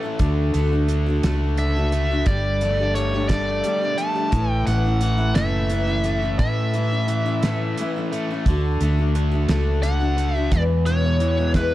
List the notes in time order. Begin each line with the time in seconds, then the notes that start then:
Already playing: E3 A3
0.03 A3 C#4 A4
0.19 D2 D3 A3 D4 F#4, kick, closed hi-hat
0.54 D2 D3 A3 D4, closed hi-hat
0.59 F#4
0.71 A3 D4 F#4
0.89 D3, closed hi-hat
1.06 A3 D4 F#4
1.23 C#2 A3 D4 F#4, snare, closed hi-hat
1.57 D3 A3 D4 F#4 E5, closed hi-hat
1.76 A3 D4 F#4
1.92 A3, closed hi-hat
2.11 A3 D4 F#4
2.26 G1 G3 A3 D4 D5, kick, closed hi-hat
2.30 G4
2.61 G3 A3 D4, closed hi-hat
2.65 G4
2.80 A3 D4 G4
2.95 G3 C#5, closed hi-hat
3.14 A3 D4 G4
3.29 G3 A3 D4 G4 D5, kick, snare, closed hi-hat
3.64 G3 A3 D4, closed hi-hat
3.68 G4
3.81 A3 D4 G4
3.98 A3 A5, closed hi-hat
4.15 A3 D4 G4
4.32 A1 A2 E3 A3 C#4 E4, kick, closed hi-hat
4.52 G5
4.67 A1 E3 A3 C#4 F#5, closed hi-hat
4.71 E4
4.85 A3 C#4 E4
5.01 E3, closed hi-hat
5.18 A3 C#4 E4
5.35 F#1 A2 E3 A3 C#4 E4 E5, snare, closed hi-hat
5.70 E3 A3 C#4, closed hi-hat
5.74 E4
5.87 A3 C#4 E4
6.04 A3, closed hi-hat
6.22 A3 C#4 E4
6.39 A2 E3 A3 C#4 E4 E5, kick, closed hi-hat
6.74 E3 A3 C#4 E4, closed hi-hat
6.91 A3 C#4 E4
7.08 E3, closed hi-hat
7.26 A3 C#4 E4
7.43 A2 E3 A3 C#4 E4, snare, closed hi-hat
7.78 E3 A3 C#4, closed hi-hat
7.82 E4
7.96 A3 C#4 E4
8.12 A3, closed hi-hat
8.30 A3 C#4 E4
8.46 D2 D3 A3, kick, closed hi-hat
8.50 D4 F#4
8.81 D2 D3 A3 D4 F#4, closed hi-hat
8.99 A3 D4 F#4
9.15 D3, closed hi-hat
9.31 A3 D4 F#4
9.48 C#2 A3 D4 F#4, snare, closed hi-hat
9.82 D3 A3 D4 F#4 F#5, closed hi-hat
10.00 A3 D4 F#4
10.17 A3, closed hi-hat
10.35 A3 D4 F#4 E5
10.51 E2 B2 E3 G#3 B3 E4 D5, kick, closed hi-hat
10.86 B2 E3 G#3 B3 E4 C#5, closed hi-hat
11.04 E3 G#3 B3 E4
11.20 E3, closed hi-hat
11.38 E3 G#3 B3 E4
11.54 E2 B2 E3 G#3 B3 E4 B4, kick, snare, closed hi-hat